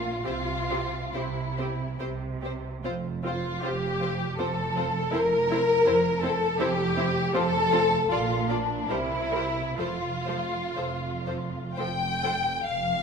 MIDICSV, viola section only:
0, 0, Header, 1, 2, 480
1, 0, Start_track
1, 0, Key_signature, -1, "major"
1, 0, Tempo, 899550
1, 130, Time_signature, 3, 2, 24, 8
1, 613, Tempo, 851064
1, 1573, Tempo, 771208
1, 2533, Tempo, 737101
1, 4453, Tempo, 779221
1, 5413, Tempo, 892857
1, 5893, Tempo, 991736
1, 6853, Tempo, 898204
1, 7522, End_track
2, 0, Start_track
2, 0, Title_t, "Viola section"
2, 0, Program_c, 0, 48
2, 126, Note_on_c, 0, 60, 44
2, 131, Note_on_c, 0, 67, 50
2, 169, Note_off_c, 0, 60, 0
2, 174, Note_off_c, 0, 67, 0
2, 372, Note_on_c, 0, 67, 42
2, 374, Note_on_c, 0, 60, 44
2, 415, Note_off_c, 0, 67, 0
2, 416, Note_off_c, 0, 60, 0
2, 612, Note_on_c, 0, 60, 42
2, 612, Note_on_c, 0, 67, 42
2, 657, Note_off_c, 0, 60, 0
2, 657, Note_off_c, 0, 67, 0
2, 855, Note_on_c, 0, 60, 38
2, 857, Note_on_c, 0, 67, 36
2, 900, Note_off_c, 0, 60, 0
2, 903, Note_off_c, 0, 67, 0
2, 1090, Note_on_c, 0, 67, 40
2, 1091, Note_on_c, 0, 60, 39
2, 1135, Note_off_c, 0, 67, 0
2, 1136, Note_off_c, 0, 60, 0
2, 1328, Note_on_c, 0, 60, 36
2, 1331, Note_on_c, 0, 67, 39
2, 1373, Note_off_c, 0, 60, 0
2, 1376, Note_off_c, 0, 67, 0
2, 1565, Note_on_c, 0, 60, 45
2, 1568, Note_on_c, 0, 65, 47
2, 1614, Note_off_c, 0, 60, 0
2, 1617, Note_off_c, 0, 65, 0
2, 1812, Note_on_c, 0, 65, 48
2, 1814, Note_on_c, 0, 60, 46
2, 1862, Note_off_c, 0, 65, 0
2, 1863, Note_off_c, 0, 60, 0
2, 2053, Note_on_c, 0, 60, 45
2, 2055, Note_on_c, 0, 65, 45
2, 2103, Note_off_c, 0, 60, 0
2, 2105, Note_off_c, 0, 65, 0
2, 2290, Note_on_c, 0, 60, 39
2, 2292, Note_on_c, 0, 65, 42
2, 2340, Note_off_c, 0, 60, 0
2, 2342, Note_off_c, 0, 65, 0
2, 2525, Note_on_c, 0, 60, 46
2, 2527, Note_on_c, 0, 65, 53
2, 2577, Note_off_c, 0, 60, 0
2, 2579, Note_off_c, 0, 65, 0
2, 2770, Note_on_c, 0, 60, 44
2, 2771, Note_on_c, 0, 65, 48
2, 2822, Note_off_c, 0, 60, 0
2, 2823, Note_off_c, 0, 65, 0
2, 3001, Note_on_c, 0, 64, 56
2, 3004, Note_on_c, 0, 60, 51
2, 3053, Note_off_c, 0, 64, 0
2, 3056, Note_off_c, 0, 60, 0
2, 3251, Note_on_c, 0, 64, 53
2, 3252, Note_on_c, 0, 60, 50
2, 3303, Note_off_c, 0, 64, 0
2, 3304, Note_off_c, 0, 60, 0
2, 3480, Note_on_c, 0, 60, 48
2, 3480, Note_on_c, 0, 64, 53
2, 3532, Note_off_c, 0, 60, 0
2, 3532, Note_off_c, 0, 64, 0
2, 3723, Note_on_c, 0, 60, 51
2, 3724, Note_on_c, 0, 64, 46
2, 3775, Note_off_c, 0, 60, 0
2, 3776, Note_off_c, 0, 64, 0
2, 3960, Note_on_c, 0, 60, 64
2, 3963, Note_on_c, 0, 64, 63
2, 4012, Note_off_c, 0, 60, 0
2, 4015, Note_off_c, 0, 64, 0
2, 4201, Note_on_c, 0, 60, 53
2, 4206, Note_on_c, 0, 64, 55
2, 4253, Note_off_c, 0, 60, 0
2, 4258, Note_off_c, 0, 64, 0
2, 4449, Note_on_c, 0, 65, 60
2, 4450, Note_on_c, 0, 60, 64
2, 4499, Note_off_c, 0, 60, 0
2, 4499, Note_off_c, 0, 65, 0
2, 4683, Note_on_c, 0, 60, 60
2, 4685, Note_on_c, 0, 65, 61
2, 4733, Note_off_c, 0, 60, 0
2, 4735, Note_off_c, 0, 65, 0
2, 4924, Note_on_c, 0, 65, 54
2, 4925, Note_on_c, 0, 58, 53
2, 4973, Note_off_c, 0, 65, 0
2, 4974, Note_off_c, 0, 58, 0
2, 5157, Note_on_c, 0, 58, 48
2, 5158, Note_on_c, 0, 65, 49
2, 5206, Note_off_c, 0, 58, 0
2, 5207, Note_off_c, 0, 65, 0
2, 5405, Note_on_c, 0, 70, 54
2, 5407, Note_on_c, 0, 55, 56
2, 5449, Note_off_c, 0, 70, 0
2, 5451, Note_off_c, 0, 55, 0
2, 5632, Note_on_c, 0, 55, 47
2, 5635, Note_on_c, 0, 70, 47
2, 5675, Note_off_c, 0, 55, 0
2, 5678, Note_off_c, 0, 70, 0
2, 5884, Note_on_c, 0, 53, 47
2, 5885, Note_on_c, 0, 69, 48
2, 5924, Note_off_c, 0, 53, 0
2, 5925, Note_off_c, 0, 69, 0
2, 6125, Note_on_c, 0, 53, 42
2, 6126, Note_on_c, 0, 69, 43
2, 6164, Note_off_c, 0, 53, 0
2, 6164, Note_off_c, 0, 69, 0
2, 6366, Note_on_c, 0, 69, 46
2, 6369, Note_on_c, 0, 53, 40
2, 6404, Note_off_c, 0, 69, 0
2, 6408, Note_off_c, 0, 53, 0
2, 6614, Note_on_c, 0, 53, 34
2, 6614, Note_on_c, 0, 69, 35
2, 6652, Note_off_c, 0, 53, 0
2, 6653, Note_off_c, 0, 69, 0
2, 6860, Note_on_c, 0, 53, 46
2, 6860, Note_on_c, 0, 69, 43
2, 6902, Note_off_c, 0, 53, 0
2, 6902, Note_off_c, 0, 69, 0
2, 7099, Note_on_c, 0, 53, 38
2, 7100, Note_on_c, 0, 69, 41
2, 7141, Note_off_c, 0, 53, 0
2, 7142, Note_off_c, 0, 69, 0
2, 7522, End_track
0, 0, End_of_file